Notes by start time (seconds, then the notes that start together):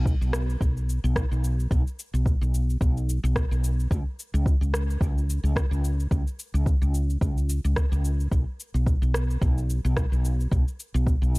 Already playing: B1
0.06 kick, cabasa
0.21 B1, cabasa
0.33 cross-stick, cabasa
0.50 cabasa
0.61 B1, kick, cabasa
0.77 cabasa
0.89 cabasa
1.04 B1, cabasa
1.16 kick, cross-stick, cabasa
1.31 B1, cabasa
1.44 cabasa
1.60 cabasa
1.71 B1, kick, cabasa
1.87 cabasa
1.99 cabasa
2.13 B1, cabasa
2.26 kick, cabasa
2.41 B1, cabasa
2.54 cabasa
2.70 cabasa
2.81 B1, kick, cabasa
2.97 cabasa
3.09 cabasa
3.23 B1, cabasa
3.36 kick, cross-stick, cabasa
3.51 B1, cabasa
3.64 cabasa
3.80 cabasa
3.91 C#2, kick, cabasa
4.19 cabasa
4.34 C#2, cabasa
4.46 kick, cabasa
4.61 C#2, cabasa
4.74 cross-stick, cabasa
4.90 cabasa
5.01 C#2, kick, cabasa
5.18 cabasa
5.30 cabasa
5.43 C#2, cabasa
5.56 kick, cross-stick, cabasa
5.71 C#2, cabasa
5.84 cabasa
6.00 cabasa
6.11 C#2, kick, cabasa
6.27 cabasa
6.39 cabasa
6.54 C#2, cabasa
6.66 kick, cabasa
6.82 C#2, cabasa
6.94 cabasa
7.10 cabasa
7.21 C#2, kick, cabasa
7.38 cabasa
7.49 cabasa
7.64 C#2, cabasa
7.76 kick, cross-stick, cabasa
7.92 C#2, cabasa
8.05 cabasa
8.20 cabasa
8.32 B1, kick, cabasa
8.60 cabasa
8.74 B1, cabasa
8.87 kick, cabasa
9.02 B1, cabasa
9.14 cross-stick, cabasa
9.30 cabasa
9.41 B1, kick, cabasa
9.58 cabasa
9.70 cabasa
9.85 B1, cabasa
9.97 kick, cross-stick, cabasa
10.12 B1, cabasa
10.25 cabasa
10.40 cabasa
10.51 B1, kick, cabasa
10.68 cabasa
10.80 cabasa
10.94 B1, cabasa
11.07 kick, cabasa
11.22 B1, cabasa
11.35 cabasa